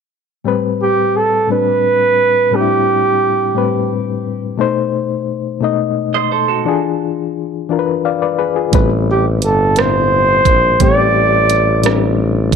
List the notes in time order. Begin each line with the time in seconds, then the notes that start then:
0.44 A2 G3 C4 B4
0.82 G4
1.16 A4
1.48 A2 G3 C4 D4
1.52 B4
2.51 A2 G3 C4 D4
2.55 G4
2.61 E4
3.54 A2 G3 C4 B4
4.57 B2 A3 D#4 C5
5.61 B2 A3 D#4 D#5
6.14 C5 D#5
6.31 A4 C5
6.48 F#4 A4
6.65 E3 D4 F4 G#4
7.69 E3 D4 F4 A#4
7.79 B4
8.05 D5 F5
8.22 B4 D5
8.39 G#4 B4
8.56 F4 G#4
8.72 A1 A2 G3 C4 B4, kick, closed hi-hat
9.11 G4
9.42 G1 A4, closed hi-hat
9.76 A2 G3 C4 D4 C5, cross-stick, closed hi-hat
9.86 E4
10.45 A#1, kick, closed hi-hat
10.78 A1 A2 G3 C4 G4 D5, kick, closed hi-hat
11.50 closed hi-hat
11.82 A2 G3 C4, cross-stick, closed hi-hat
11.86 D4
12.52 kick